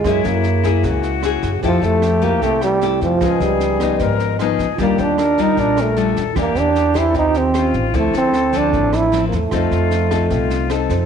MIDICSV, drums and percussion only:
0, 0, Header, 1, 2, 480
1, 0, Start_track
1, 0, Tempo, 394477
1, 64, Time_signature, 4, 2, 24, 8
1, 13454, End_track
2, 0, Start_track
2, 0, Title_t, "Drums"
2, 54, Note_on_c, 9, 36, 58
2, 54, Note_on_c, 9, 37, 56
2, 54, Note_on_c, 9, 38, 22
2, 175, Note_off_c, 9, 37, 0
2, 175, Note_off_c, 9, 38, 0
2, 176, Note_off_c, 9, 36, 0
2, 291, Note_on_c, 9, 38, 24
2, 413, Note_off_c, 9, 38, 0
2, 529, Note_on_c, 9, 38, 25
2, 651, Note_off_c, 9, 38, 0
2, 774, Note_on_c, 9, 36, 23
2, 775, Note_on_c, 9, 37, 59
2, 775, Note_on_c, 9, 38, 23
2, 895, Note_off_c, 9, 36, 0
2, 896, Note_off_c, 9, 37, 0
2, 896, Note_off_c, 9, 38, 0
2, 1011, Note_on_c, 9, 38, 25
2, 1015, Note_on_c, 9, 36, 64
2, 1132, Note_off_c, 9, 38, 0
2, 1136, Note_off_c, 9, 36, 0
2, 1253, Note_on_c, 9, 38, 23
2, 1374, Note_off_c, 9, 38, 0
2, 1491, Note_on_c, 9, 37, 53
2, 1491, Note_on_c, 9, 38, 22
2, 1613, Note_off_c, 9, 37, 0
2, 1613, Note_off_c, 9, 38, 0
2, 1734, Note_on_c, 9, 38, 24
2, 1736, Note_on_c, 9, 36, 23
2, 1856, Note_off_c, 9, 38, 0
2, 1858, Note_off_c, 9, 36, 0
2, 1979, Note_on_c, 9, 36, 58
2, 1979, Note_on_c, 9, 38, 23
2, 2101, Note_off_c, 9, 36, 0
2, 2101, Note_off_c, 9, 38, 0
2, 2222, Note_on_c, 9, 38, 21
2, 2343, Note_off_c, 9, 38, 0
2, 2460, Note_on_c, 9, 37, 56
2, 2460, Note_on_c, 9, 38, 26
2, 2581, Note_off_c, 9, 37, 0
2, 2581, Note_off_c, 9, 38, 0
2, 2698, Note_on_c, 9, 38, 23
2, 2701, Note_on_c, 9, 36, 23
2, 2820, Note_off_c, 9, 38, 0
2, 2823, Note_off_c, 9, 36, 0
2, 2942, Note_on_c, 9, 36, 62
2, 2942, Note_on_c, 9, 38, 24
2, 3064, Note_off_c, 9, 36, 0
2, 3064, Note_off_c, 9, 38, 0
2, 3181, Note_on_c, 9, 37, 57
2, 3181, Note_on_c, 9, 38, 24
2, 3302, Note_off_c, 9, 37, 0
2, 3302, Note_off_c, 9, 38, 0
2, 3422, Note_on_c, 9, 38, 23
2, 3543, Note_off_c, 9, 38, 0
2, 3663, Note_on_c, 9, 36, 25
2, 3666, Note_on_c, 9, 38, 24
2, 3785, Note_off_c, 9, 36, 0
2, 3788, Note_off_c, 9, 38, 0
2, 3904, Note_on_c, 9, 36, 61
2, 3904, Note_on_c, 9, 37, 57
2, 3904, Note_on_c, 9, 38, 24
2, 4026, Note_off_c, 9, 36, 0
2, 4026, Note_off_c, 9, 37, 0
2, 4026, Note_off_c, 9, 38, 0
2, 4143, Note_on_c, 9, 38, 23
2, 4265, Note_off_c, 9, 38, 0
2, 4381, Note_on_c, 9, 38, 25
2, 4503, Note_off_c, 9, 38, 0
2, 4623, Note_on_c, 9, 36, 24
2, 4623, Note_on_c, 9, 37, 56
2, 4623, Note_on_c, 9, 38, 25
2, 4744, Note_off_c, 9, 36, 0
2, 4745, Note_off_c, 9, 37, 0
2, 4745, Note_off_c, 9, 38, 0
2, 4858, Note_on_c, 9, 38, 24
2, 4863, Note_on_c, 9, 36, 55
2, 4980, Note_off_c, 9, 38, 0
2, 4985, Note_off_c, 9, 36, 0
2, 5104, Note_on_c, 9, 38, 25
2, 5226, Note_off_c, 9, 38, 0
2, 5344, Note_on_c, 9, 37, 55
2, 5344, Note_on_c, 9, 38, 23
2, 5466, Note_off_c, 9, 37, 0
2, 5466, Note_off_c, 9, 38, 0
2, 5583, Note_on_c, 9, 36, 23
2, 5587, Note_on_c, 9, 38, 24
2, 5705, Note_off_c, 9, 36, 0
2, 5709, Note_off_c, 9, 38, 0
2, 5817, Note_on_c, 9, 38, 23
2, 5821, Note_on_c, 9, 36, 56
2, 5939, Note_off_c, 9, 38, 0
2, 5942, Note_off_c, 9, 36, 0
2, 6059, Note_on_c, 9, 38, 24
2, 6181, Note_off_c, 9, 38, 0
2, 6303, Note_on_c, 9, 37, 59
2, 6303, Note_on_c, 9, 38, 25
2, 6425, Note_off_c, 9, 37, 0
2, 6425, Note_off_c, 9, 38, 0
2, 6541, Note_on_c, 9, 36, 23
2, 6542, Note_on_c, 9, 38, 24
2, 6663, Note_off_c, 9, 36, 0
2, 6664, Note_off_c, 9, 38, 0
2, 6778, Note_on_c, 9, 38, 23
2, 6780, Note_on_c, 9, 36, 60
2, 6900, Note_off_c, 9, 38, 0
2, 6901, Note_off_c, 9, 36, 0
2, 7018, Note_on_c, 9, 37, 55
2, 7018, Note_on_c, 9, 38, 21
2, 7140, Note_off_c, 9, 37, 0
2, 7140, Note_off_c, 9, 38, 0
2, 7258, Note_on_c, 9, 38, 23
2, 7380, Note_off_c, 9, 38, 0
2, 7498, Note_on_c, 9, 36, 24
2, 7499, Note_on_c, 9, 38, 23
2, 7619, Note_off_c, 9, 36, 0
2, 7621, Note_off_c, 9, 38, 0
2, 7737, Note_on_c, 9, 37, 58
2, 7737, Note_on_c, 9, 38, 23
2, 7738, Note_on_c, 9, 36, 57
2, 7859, Note_off_c, 9, 36, 0
2, 7859, Note_off_c, 9, 37, 0
2, 7859, Note_off_c, 9, 38, 0
2, 7976, Note_on_c, 9, 38, 24
2, 8098, Note_off_c, 9, 38, 0
2, 8218, Note_on_c, 9, 38, 24
2, 8339, Note_off_c, 9, 38, 0
2, 8457, Note_on_c, 9, 36, 25
2, 8457, Note_on_c, 9, 37, 57
2, 8457, Note_on_c, 9, 38, 25
2, 8578, Note_off_c, 9, 36, 0
2, 8579, Note_off_c, 9, 37, 0
2, 8579, Note_off_c, 9, 38, 0
2, 8691, Note_on_c, 9, 38, 24
2, 8695, Note_on_c, 9, 36, 59
2, 8812, Note_off_c, 9, 38, 0
2, 8817, Note_off_c, 9, 36, 0
2, 8932, Note_on_c, 9, 38, 24
2, 9054, Note_off_c, 9, 38, 0
2, 9175, Note_on_c, 9, 37, 61
2, 9175, Note_on_c, 9, 38, 24
2, 9297, Note_off_c, 9, 37, 0
2, 9297, Note_off_c, 9, 38, 0
2, 9417, Note_on_c, 9, 38, 22
2, 9418, Note_on_c, 9, 36, 24
2, 9539, Note_off_c, 9, 36, 0
2, 9539, Note_off_c, 9, 38, 0
2, 9657, Note_on_c, 9, 38, 24
2, 9659, Note_on_c, 9, 36, 60
2, 9778, Note_off_c, 9, 38, 0
2, 9780, Note_off_c, 9, 36, 0
2, 9900, Note_on_c, 9, 38, 23
2, 10021, Note_off_c, 9, 38, 0
2, 10140, Note_on_c, 9, 37, 57
2, 10140, Note_on_c, 9, 38, 24
2, 10262, Note_off_c, 9, 37, 0
2, 10262, Note_off_c, 9, 38, 0
2, 10380, Note_on_c, 9, 38, 25
2, 10381, Note_on_c, 9, 36, 25
2, 10501, Note_off_c, 9, 38, 0
2, 10502, Note_off_c, 9, 36, 0
2, 10622, Note_on_c, 9, 36, 55
2, 10624, Note_on_c, 9, 38, 24
2, 10744, Note_off_c, 9, 36, 0
2, 10746, Note_off_c, 9, 38, 0
2, 10862, Note_on_c, 9, 37, 59
2, 10862, Note_on_c, 9, 38, 23
2, 10983, Note_off_c, 9, 37, 0
2, 10983, Note_off_c, 9, 38, 0
2, 11102, Note_on_c, 9, 38, 24
2, 11224, Note_off_c, 9, 38, 0
2, 11342, Note_on_c, 9, 36, 21
2, 11342, Note_on_c, 9, 38, 23
2, 11464, Note_off_c, 9, 36, 0
2, 11464, Note_off_c, 9, 38, 0
2, 11576, Note_on_c, 9, 37, 60
2, 11576, Note_on_c, 9, 38, 23
2, 11581, Note_on_c, 9, 36, 56
2, 11698, Note_off_c, 9, 37, 0
2, 11698, Note_off_c, 9, 38, 0
2, 11703, Note_off_c, 9, 36, 0
2, 11821, Note_on_c, 9, 38, 23
2, 11943, Note_off_c, 9, 38, 0
2, 12057, Note_on_c, 9, 38, 25
2, 12179, Note_off_c, 9, 38, 0
2, 12300, Note_on_c, 9, 36, 25
2, 12300, Note_on_c, 9, 37, 55
2, 12300, Note_on_c, 9, 38, 23
2, 12421, Note_off_c, 9, 36, 0
2, 12422, Note_off_c, 9, 37, 0
2, 12422, Note_off_c, 9, 38, 0
2, 12536, Note_on_c, 9, 38, 26
2, 12539, Note_on_c, 9, 36, 57
2, 12657, Note_off_c, 9, 38, 0
2, 12661, Note_off_c, 9, 36, 0
2, 12780, Note_on_c, 9, 38, 24
2, 12902, Note_off_c, 9, 38, 0
2, 13017, Note_on_c, 9, 37, 60
2, 13017, Note_on_c, 9, 38, 22
2, 13138, Note_off_c, 9, 37, 0
2, 13138, Note_off_c, 9, 38, 0
2, 13257, Note_on_c, 9, 38, 24
2, 13259, Note_on_c, 9, 36, 23
2, 13379, Note_off_c, 9, 38, 0
2, 13380, Note_off_c, 9, 36, 0
2, 13454, End_track
0, 0, End_of_file